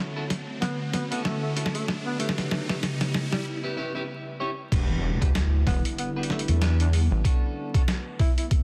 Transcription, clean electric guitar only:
0.00 0.12 C#4 medium
0.00 0.12 E4 medium
0.00 0.12 F#4 medium
0.00 0.12 A4 medium
0.16 0.23 C#4 medium
0.16 0.23 E4 medium
0.16 0.23 F#4 medium
0.16 0.23 A4 medium
1.11 1.53 C#4 medium
1.11 1.53 E4 medium
1.11 1.53 F#4 medium
1.11 1.53 A4 medium
1.56 1.71 C#4 medium
1.56 1.71 E4 medium
1.56 1.71 F#4 medium
1.56 1.71 A4 medium
2.19 2.65 C#4 medium
2.19 2.65 E4 medium
2.19 2.65 G4 medium
2.19 2.65 B4 medium
2.69 2.76 C#4 medium
2.69 2.76 E4 medium
2.69 2.76 G4 medium
2.69 2.76 B4 medium
3.64 3.75 C#4 medium
3.64 3.75 E4 medium
3.64 3.75 G4 medium
3.64 3.75 B4 medium
3.77 3.92 C#4 medium
3.77 3.92 E4 medium
3.77 3.92 G4 medium
3.77 3.92 B4 medium
3.95 4.02 C#4 medium
3.95 4.02 E4 medium
3.95 4.02 G4 medium
3.95 4.02 B4 medium
4.40 4.50 C#4 medium
4.40 4.50 E4 medium
4.40 4.50 G4 medium
4.40 4.50 C#5 medium
4.72 5.18 D4 medium
4.72 5.18 F#4 medium
4.72 5.18 G4 medium
4.72 5.17 B4 medium
5.21 5.29 D4 medium
5.21 5.29 F#4 medium
5.21 5.29 G4 medium
5.21 5.29 B4 medium
6.16 6.58 D4 medium
6.16 6.59 F#4 medium
6.16 6.59 G4 medium
6.16 6.59 B4 medium
6.61 6.76 D4 medium
6.61 6.76 F#4 medium
6.61 6.76 G4 medium
6.61 6.76 B4 medium
7.24 7.70 C#4 medium
7.24 7.70 D4 medium
7.24 7.70 F#4 medium
7.24 7.70 A4 medium
7.74 7.81 C#4 medium
7.74 7.81 D4 medium
7.74 7.81 F#4 medium
7.74 7.81 A4 loud

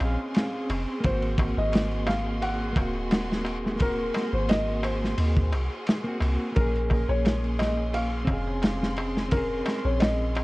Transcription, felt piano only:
0.00 0.66 F5 medium
1.05 1.59 C5 medium
1.58 2.10 D#5 medium
2.07 2.43 F5 loud
2.42 3.41 F#5 loud
3.82 4.30 A#4 loud
4.34 4.50 C5 medium
4.49 4.81 D#5 loud
4.84 5.49 C5 medium
6.56 7.05 A#4 medium
7.09 7.56 C#5 loud
7.59 7.95 D#5 loud
7.94 8.93 F5 loud
9.32 9.87 A#4 medium
9.85 10.01 C#5 medium
10.00 10.44 D#5 medium

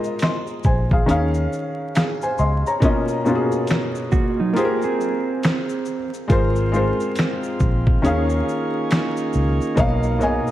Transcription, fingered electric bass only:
0.66 1.02 A#1 medium
1.10 1.46 D#2 loud
2.40 2.63 C#2 medium
6.31 6.90 G#1 loud
7.61 7.97 A#1 medium
8.04 8.41 D#2 loud
9.35 9.58 C#2 medium
9.78 10.38 B1 loud

